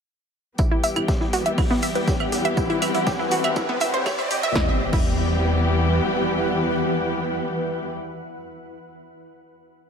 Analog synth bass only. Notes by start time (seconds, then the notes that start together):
0.71 E2
0.84 E2
0.96 E2
1.21 E2
1.33 E2
1.46 E2
1.83 E2
1.95 E2
2.20 E2
2.45 E2
3.44 C2
3.69 E2
3.81 E2
3.94 E2
4.18 C2
4.31 C2
4.43 C2
4.55 E2
4.93 E2